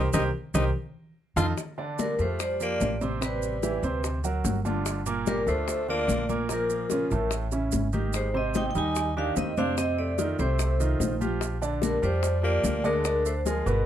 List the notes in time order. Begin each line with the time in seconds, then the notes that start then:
0.13 C2 D#4 G4 A#4 C5, low bongo, low conga, maracas
0.54 C2 D#4 G4 A#4 C5, low bongo, low conga, maracas
1.36 F2 D#4 F4 A4, low bongo, low conga, maracas
1.58 high bongo, high conga, maracas
1.78 D3 D4 D5, high bongo, high conga
1.99 G3 A#4, high bongo, high conga, maracas
2.19 F2 F3 A3 F4 G4 C5, high bongo, high conga, maracas
2.40 G3 C5, high bongo, high conga, maracas
2.60 F3 A#3 F4 G4 D5, high bongo, high conga, maracas
2.81 A1, high bongo, low bongo, high conga, maracas
3.01 C3 C4 C5, high conga, maracas
3.21 C3 G3 C4 B4, high bongo, high conga, maracas
3.42 high bongo, high conga, maracas
3.63 E3 E4 G4, high bongo, high conga, maracas
3.83 D2 C3 C4 C5, high bongo, high conga, maracas
4.04 high bongo, high conga, maracas
4.24 F#3 F#4 A#4, high bongo, high conga, maracas
4.44 G1, high bongo, low bongo, high conga, maracas
4.65 D3 D4 F4, high conga, maracas
4.86 high bongo, high conga, maracas
5.06 A#2 A#3 A#4, high bongo, high conga, maracas
5.26 G3 A#4, high bongo, high conga, maracas
5.47 D2 D3 A3 D4 F4 C5, high bongo, high conga, maracas
5.68 high bongo, high conga, maracas
5.88 D3 A#3 D4 F4 D5, high bongo, high conga
6.08 A#1, high bongo, low bongo, high conga, maracas
6.29 A#2 A#3 A#4, high conga, maracas
6.49 A#2 F3 A#3 A#4, high bongo, high conga, maracas
6.70 high bongo, high conga, maracas
6.90 C#3 C#4 F4, high bongo, high conga, maracas
7.11 A1 A2 A3 A4, high bongo, high conga, maracas
7.31 high bongo, high conga, maracas
7.52 C#3 C#4 E4, high bongo, high conga, maracas
7.72 G#1, high bongo, low bongo, high conga, maracas
7.93 D#3 D#4 G4, high conga, maracas
8.13 G#3 C5, high bongo, high conga, maracas
8.34 C3 C4 C5 D#5, high bongo, high conga
8.54 D#4 G5, high bongo, high conga, maracas
8.68 D#4 G5
8.75 D#2 D#3 G3 D#4 G#5, high bongo, high conga, maracas
8.95 high bongo, high conga, maracas
9.17 D#3 D4 D#4 G4 F5, high bongo, high conga
9.36 F2 C4 D#5, high bongo, low bongo, high conga, maracas
9.57 C3 C4 D4 C5 F5, high conga, maracas
9.77 C3 C4 C5 D#5, high bongo, high conga, maracas
9.98 A3 D5, high bongo, high conga
10.18 D#3 D#4 F4, high bongo, high conga, maracas
10.39 C2 C3 A3 C4 C5, high bongo, high conga, maracas
10.59 high bongo, high conga, maracas
10.80 D#3 D#4 F4, high bongo, high conga, maracas
11.00 A#1, high bongo, low bongo, high conga, maracas
11.21 F3 F4 G4, high conga, maracas
11.41 high bongo, high conga, maracas
11.62 D3 D4 D5, high bongo, high conga, maracas
11.82 G3 A#4, high bongo, high conga, maracas
12.02 F2 F3 G3 F4 G4 C5, high bongo, high conga, maracas
12.23 high bongo, high conga, maracas
12.43 F3 A#3 F4 G4 D5, high bongo, high conga
12.64 D2, high bongo, low bongo, high conga, maracas
12.84 D3 G#3 D4 A#4 D5, high conga, maracas
13.05 D3 D4 D5, high bongo, high conga, maracas
13.25 A3 C5, high bongo, high conga, maracas
13.45 F3 G#3 F4 G#4 A#4, high bongo, high conga, maracas
13.66 G1 B2 B3 B4, high bongo, high conga, maracas